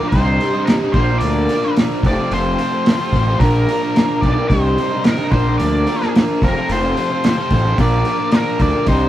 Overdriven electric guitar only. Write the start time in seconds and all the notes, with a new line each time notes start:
Already playing: A#2 F3
0.01 A#3 D4 F4 A#4
0.13 C2 G2 C3 G3 D#4
0.41 G2 C3 G3 D#4
0.53 C3 G3 D#4
0.68 C2 G2 C3 G3 D#4
0.81 C3 G3 D#4
0.95 A#2 F3 A#3 D4 F4 A#4
1.09 A#3 D4 F4 A#4
1.50 A#3 D4 F4 A#4
1.63 A#3 D4 F4 A#4
1.77 A#2 F3 A#3 D4 F4 A#4
2.06 F2 C3 F3 A3 C4 F4
2.19 F3 A3 C4 F4
2.32 F2 C3 F3 A3 C4 F4
2.59 F3 A3 C4 F4
2.72 F3 A3 C4 F4
2.86 F2 C3 F3 A3 C4 F4
3.00 F3 A3 C4 F4
3.13 F3 A3 C4 F4
3.28 F3 A3 C4 F4
3.41 A#2 F3 A#3 D4 F4 A#4
3.69 A#3 D4 F4 A#4
3.82 A#3 D4 F4 A#4
3.95 A#2 F3 A#3 D4 F4 A#4
4.24 A#3 D4 F4 A#4
4.36 A#3 D4 F4 A#4
4.50 C2 G2 C3 G3 D#4
4.79 G2 C3 G3 D#4
4.91 C3 G3 D#4
5.04 C2 G2 C3 G3 D#4
5.18 C3 G3 D#4
5.32 A#2 F3 A#3 D4 F4 A#4
5.47 A#3 D4 F4 A#4
5.87 A#3 D4 F4 A#4
6.01 A#3 D4 F4 A#4
6.15 A#2 F3 A#3 D4 F4 A#4
6.42 F2 C3 F3 A3 C4 F4
6.56 F3 A3 C4 F4
6.70 F2 C3 F3 A3 C4 F4
6.97 F3 A3 C4 F4
7.11 F3 A3 C4 F4
7.24 F2 C3 F3 A3 C4 F4
7.38 F3 A3 C4 F4
7.52 F3 A3 C4 F4
7.66 F3 A3 C4 F4
7.79 A#2 F3 A#3 D4 F4 A#4
8.05 A#3 D4 F4 A#4
8.19 A#3 D4 F4 A#4
8.31 A#2 F3 A#3 D4 F4 A#4
8.59 A#3 D4 F4 A#4
8.73 A#3 D4 F4 A#4
8.86 C2 G2 C3 G3 D#4